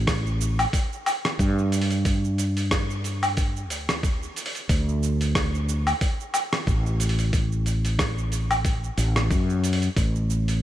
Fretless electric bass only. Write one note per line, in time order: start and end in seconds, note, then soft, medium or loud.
0.00 0.64 A1 loud
1.39 3.70 G2 loud
3.70 4.27 D2 loud
4.69 5.92 D2 loud
6.67 8.89 A1 loud
8.97 9.30 A1 medium
9.31 9.87 F#2 loud
9.96 10.62 A1 medium